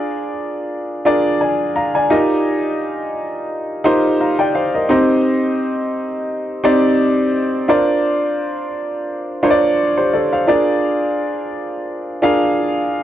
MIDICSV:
0, 0, Header, 1, 2, 480
1, 0, Start_track
1, 0, Key_signature, -2, "major"
1, 0, Tempo, 697674
1, 1450, Time_signature, 4, 2, 24, 8
1, 8965, End_track
2, 0, Start_track
2, 0, Title_t, "Grand piano"
2, 0, Program_c, 0, 0
2, 0, Control_c, 0, 64, 127
2, 0, Note_on_c, 0, 62, 87
2, 0, Note_on_c, 0, 65, 81
2, 0, Note_on_c, 0, 68, 82
2, 0, Note_on_c, 0, 70, 79
2, 0, Note_on_c, 0, 74, 98
2, 199, Note_off_c, 0, 62, 0
2, 200, Note_off_c, 0, 65, 0
2, 201, Note_off_c, 0, 68, 0
2, 201, Note_off_c, 0, 70, 0
2, 203, Note_off_c, 0, 74, 0
2, 724, Note_on_c, 0, 62, 87
2, 726, Note_on_c, 0, 65, 82
2, 728, Note_on_c, 0, 68, 77
2, 731, Note_on_c, 0, 70, 79
2, 732, Note_on_c, 0, 74, 101
2, 963, Note_off_c, 0, 74, 0
2, 969, Note_on_c, 0, 80, 65
2, 973, Note_on_c, 0, 74, 55
2, 1198, Note_off_c, 0, 80, 0
2, 1200, Note_off_c, 0, 74, 0
2, 1209, Note_on_c, 0, 82, 67
2, 1213, Note_on_c, 0, 77, 59
2, 1228, Note_off_c, 0, 62, 0
2, 1229, Note_off_c, 0, 65, 0
2, 1230, Note_off_c, 0, 68, 0
2, 1232, Note_off_c, 0, 70, 0
2, 1335, Note_off_c, 0, 82, 0
2, 1337, Note_off_c, 0, 77, 0
2, 1341, Note_on_c, 0, 80, 69
2, 1345, Note_on_c, 0, 74, 58
2, 1446, Note_on_c, 0, 63, 86
2, 1448, Note_on_c, 0, 65, 76
2, 1449, Note_on_c, 0, 67, 78
2, 1451, Note_on_c, 0, 70, 78
2, 1453, Note_on_c, 0, 75, 93
2, 1460, Control_c, 0, 64, 0
2, 1559, Control_c, 0, 64, 127
2, 1570, Note_off_c, 0, 80, 0
2, 1572, Note_off_c, 0, 74, 0
2, 2119, Note_off_c, 0, 63, 0
2, 2120, Note_off_c, 0, 65, 0
2, 2121, Note_off_c, 0, 67, 0
2, 2122, Note_off_c, 0, 70, 0
2, 2123, Note_off_c, 0, 75, 0
2, 2644, Note_on_c, 0, 63, 93
2, 2645, Note_on_c, 0, 65, 79
2, 2647, Note_on_c, 0, 67, 86
2, 2649, Note_on_c, 0, 70, 81
2, 2652, Note_on_c, 0, 72, 96
2, 2890, Note_off_c, 0, 70, 0
2, 2891, Note_off_c, 0, 72, 0
2, 2892, Note_on_c, 0, 82, 62
2, 2895, Note_on_c, 0, 77, 54
2, 3017, Note_off_c, 0, 82, 0
2, 3018, Note_off_c, 0, 77, 0
2, 3020, Note_on_c, 0, 79, 72
2, 3024, Note_on_c, 0, 74, 64
2, 3124, Note_off_c, 0, 79, 0
2, 3126, Note_off_c, 0, 74, 0
2, 3129, Note_on_c, 0, 77, 68
2, 3133, Note_on_c, 0, 72, 62
2, 3148, Note_off_c, 0, 63, 0
2, 3149, Note_off_c, 0, 65, 0
2, 3150, Note_off_c, 0, 67, 0
2, 3255, Note_off_c, 0, 77, 0
2, 3257, Note_off_c, 0, 72, 0
2, 3264, Note_on_c, 0, 75, 66
2, 3266, Note_on_c, 0, 70, 59
2, 3363, Note_off_c, 0, 75, 0
2, 3364, Note_on_c, 0, 60, 89
2, 3367, Note_on_c, 0, 63, 79
2, 3369, Note_on_c, 0, 67, 77
2, 3372, Note_on_c, 0, 72, 78
2, 3373, Note_on_c, 0, 75, 93
2, 3380, Control_c, 0, 64, 0
2, 3492, Note_off_c, 0, 70, 0
2, 3508, Control_c, 0, 64, 127
2, 4038, Note_off_c, 0, 60, 0
2, 4040, Note_off_c, 0, 63, 0
2, 4041, Note_off_c, 0, 67, 0
2, 4042, Note_off_c, 0, 72, 0
2, 4043, Note_off_c, 0, 75, 0
2, 4566, Note_on_c, 0, 60, 92
2, 4568, Note_on_c, 0, 63, 81
2, 4570, Note_on_c, 0, 67, 87
2, 4571, Note_on_c, 0, 72, 83
2, 4573, Note_on_c, 0, 74, 97
2, 5069, Note_off_c, 0, 60, 0
2, 5070, Note_off_c, 0, 63, 0
2, 5071, Note_off_c, 0, 67, 0
2, 5072, Note_off_c, 0, 72, 0
2, 5073, Note_off_c, 0, 74, 0
2, 5285, Note_on_c, 0, 62, 88
2, 5288, Note_on_c, 0, 65, 82
2, 5290, Note_on_c, 0, 70, 85
2, 5292, Note_on_c, 0, 72, 81
2, 5295, Note_on_c, 0, 74, 98
2, 5300, Control_c, 0, 64, 0
2, 5435, Control_c, 0, 64, 127
2, 5959, Note_off_c, 0, 62, 0
2, 5960, Note_off_c, 0, 65, 0
2, 5961, Note_off_c, 0, 70, 0
2, 5962, Note_off_c, 0, 72, 0
2, 5964, Note_off_c, 0, 74, 0
2, 6486, Note_on_c, 0, 62, 91
2, 6487, Note_on_c, 0, 65, 83
2, 6490, Note_on_c, 0, 70, 79
2, 6491, Note_on_c, 0, 72, 81
2, 6494, Note_on_c, 0, 73, 80
2, 6539, Note_on_c, 0, 74, 104
2, 6541, Note_off_c, 0, 73, 0
2, 6730, Note_off_c, 0, 70, 0
2, 6731, Note_off_c, 0, 72, 0
2, 6755, Note_off_c, 0, 74, 0
2, 6863, Note_on_c, 0, 72, 70
2, 6867, Note_on_c, 0, 67, 55
2, 6965, Note_off_c, 0, 72, 0
2, 6968, Note_off_c, 0, 67, 0
2, 6972, Note_on_c, 0, 74, 66
2, 6976, Note_on_c, 0, 69, 62
2, 6990, Note_off_c, 0, 62, 0
2, 6990, Note_off_c, 0, 65, 0
2, 7097, Note_off_c, 0, 74, 0
2, 7099, Note_off_c, 0, 69, 0
2, 7104, Note_on_c, 0, 77, 70
2, 7109, Note_on_c, 0, 72, 61
2, 7206, Note_on_c, 0, 62, 85
2, 7208, Note_on_c, 0, 65, 78
2, 7210, Note_on_c, 0, 68, 78
2, 7212, Note_on_c, 0, 70, 78
2, 7214, Note_on_c, 0, 74, 93
2, 7219, Control_c, 0, 64, 0
2, 7330, Control_c, 0, 64, 127
2, 7331, Note_off_c, 0, 77, 0
2, 7334, Note_off_c, 0, 72, 0
2, 7879, Note_off_c, 0, 62, 0
2, 7880, Note_off_c, 0, 65, 0
2, 7882, Note_off_c, 0, 68, 0
2, 7882, Note_off_c, 0, 70, 0
2, 7883, Note_off_c, 0, 74, 0
2, 8408, Note_on_c, 0, 62, 89
2, 8410, Note_on_c, 0, 65, 81
2, 8412, Note_on_c, 0, 68, 82
2, 8414, Note_on_c, 0, 70, 77
2, 8417, Note_on_c, 0, 77, 101
2, 8910, Note_off_c, 0, 62, 0
2, 8912, Note_off_c, 0, 65, 0
2, 8913, Note_off_c, 0, 68, 0
2, 8914, Note_off_c, 0, 70, 0
2, 8915, Note_off_c, 0, 77, 0
2, 8965, End_track
0, 0, End_of_file